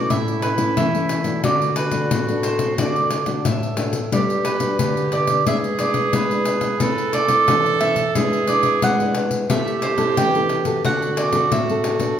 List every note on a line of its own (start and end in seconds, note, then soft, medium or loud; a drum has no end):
0.00 0.54 A3 medium
0.00 0.54 C#4 medium
0.00 0.54 E4 medium
0.00 0.11 F#4 loud
0.00 0.11 D5 medium
0.10 0.74 A2 medium
0.10 1.43 E4 medium
0.10 0.42 E5 medium
0.10 pandeiro medium
0.28 pandeiro soft
0.42 0.77 B4 medium
0.42 pandeiro medium
0.58 0.87 A3 medium
0.58 0.88 C#4 medium
0.58 0.88 E4 medium
0.58 pandeiro medium
0.77 1.41 E3 medium
0.77 1.40 E5 medium
0.77 pandeiro medium
0.95 1.23 A3 medium
0.95 1.23 C#4 medium
0.95 1.23 E4 medium
0.95 pandeiro soft
1.09 pandeiro medium
1.24 1.88 A3 soft
1.24 1.88 D4 medium
1.24 1.89 F#4 medium
1.24 pandeiro soft
1.44 2.08 D3 medium
1.44 3.75 F#4 medium
1.44 1.76 D5 medium
1.44 pandeiro medium
1.62 pandeiro soft
1.76 2.40 B4 medium
1.76 pandeiro medium
1.91 2.22 A3 medium
1.91 2.22 D4 medium
1.91 2.22 F#4 medium
1.91 pandeiro medium
2.11 2.75 A2 medium
2.11 pandeiro medium
2.28 2.74 A3 medium
2.28 2.74 D4 medium
2.28 2.74 F#4 medium
2.28 pandeiro soft
2.43 2.79 C5 medium
2.43 pandeiro medium
2.59 pandeiro medium
2.78 3.42 D3 medium
2.78 3.10 A3 soft
2.78 3.10 D4 soft
2.78 3.10 F#4 soft
2.78 3.45 D5 medium
2.78 pandeiro medium
2.96 pandeiro soft
3.11 pandeiro medium
3.26 3.73 A3 medium
3.26 3.73 D4 medium
3.26 3.73 F#4 medium
3.26 pandeiro medium
3.45 4.09 A2 medium
3.45 4.13 E5 medium
3.45 pandeiro medium
3.63 pandeiro soft
3.77 3.98 A3 soft
3.77 3.98 D4 soft
3.77 3.98 F#4 medium
3.77 pandeiro medium
3.93 pandeiro medium
4.12 4.76 G3 medium
4.12 4.44 D4 medium
4.12 4.76 G4 medium
4.12 4.44 B4 medium
4.12 4.22 D5 medium
4.12 pandeiro medium
4.30 pandeiro soft
4.45 5.09 B4 medium
4.45 pandeiro medium
4.60 5.07 D4 medium
4.60 5.07 F#4 medium
4.60 5.07 B4 medium
4.60 pandeiro medium
4.79 5.43 D3 medium
4.79 5.43 G4 medium
4.79 pandeiro medium
4.97 pandeiro soft
5.12 5.43 D4 medium
5.12 5.44 B4 soft
5.12 5.44 D5 medium
5.12 pandeiro medium
5.27 pandeiro medium
5.46 6.10 G#3 medium
5.46 5.66 D4 soft
5.46 5.67 E4 soft
5.46 6.83 G#4 medium
5.46 5.67 B4 medium
5.46 5.57 E5 medium
5.46 pandeiro medium
5.64 pandeiro soft
5.79 6.25 D4 medium
5.79 6.25 E4 medium
5.79 6.25 B4 medium
5.79 6.15 D5 medium
5.79 pandeiro medium
5.94 pandeiro medium
6.13 6.78 G#3 medium
6.13 6.81 B4 medium
6.13 pandeiro medium
6.31 6.76 D4 medium
6.31 6.76 E4 medium
6.31 6.76 B4 medium
6.31 pandeiro soft
6.45 pandeiro medium
6.61 pandeiro medium
6.80 7.45 A3 medium
6.80 7.26 C4 medium
6.80 7.26 E4 medium
6.80 8.17 A4 loud
6.80 7.14 B4 medium
6.80 pandeiro medium
6.98 pandeiro soft
7.13 7.78 D5 medium
7.13 pandeiro medium
7.28 7.75 C4 medium
7.28 7.75 E4 medium
7.28 7.76 C5 medium
7.28 pandeiro medium
7.48 8.12 E3 medium
7.48 pandeiro medium
7.66 pandeiro soft
7.80 8.03 C4 medium
7.80 8.03 E4 soft
7.80 8.03 C5 medium
7.80 8.44 E5 loud
7.80 pandeiro medium
7.96 pandeiro medium
8.15 8.79 G#3 medium
8.15 8.44 D4 soft
8.15 8.44 E4 medium
8.15 9.23 G#4 loud
8.15 8.44 B4 medium
8.15 pandeiro medium
8.33 pandeiro soft
8.47 8.94 D4 soft
8.47 8.94 E4 medium
8.47 8.94 B4 medium
8.47 8.80 D5 medium
8.47 pandeiro medium
8.63 pandeiro medium
8.82 9.46 G#3 medium
8.82 9.46 F#5 medium
8.82 pandeiro medium
9.00 9.45 D4 medium
9.00 9.45 E4 medium
9.00 9.45 B4 medium
9.00 pandeiro soft
9.15 pandeiro medium
9.31 pandeiro soft
9.50 10.14 A3 medium
9.50 9.95 C4 medium
9.50 9.95 E4 soft
9.50 10.81 G4 loud
9.50 9.96 A4 medium
9.50 9.85 E5 medium
9.50 pandeiro medium
9.68 pandeiro soft
9.82 10.18 C5 medium
9.82 pandeiro medium
9.98 10.27 C4 medium
9.98 10.28 E4 medium
9.98 10.28 A4 medium
9.98 pandeiro medium
10.17 10.81 E3 medium
10.17 10.81 G5 medium
10.17 pandeiro medium
10.35 10.63 C4 medium
10.35 10.63 E4 medium
10.35 10.63 A4 medium
10.35 pandeiro soft
10.49 pandeiro medium
10.65 11.28 C4 medium
10.65 11.29 F#4 medium
10.65 11.29 A4 medium
10.65 pandeiro medium
10.85 11.49 D3 medium
10.85 12.20 F#4 medium
10.85 11.16 F#5 loud
10.85 pandeiro medium
11.02 pandeiro soft
11.17 11.49 D5 medium
11.17 pandeiro medium
11.32 11.62 C4 medium
11.32 11.62 F#4 medium
11.32 11.62 A4 medium
11.32 pandeiro medium
11.52 12.16 A2 medium
11.52 12.15 E5 medium
11.52 pandeiro medium
11.69 11.98 C4 medium
11.69 11.98 F#4 medium
11.69 11.98 A4 medium
11.69 pandeiro soft
11.84 pandeiro medium
12.00 12.20 B3 soft
12.00 12.20 D4 soft
12.00 12.20 A4 medium
12.00 pandeiro medium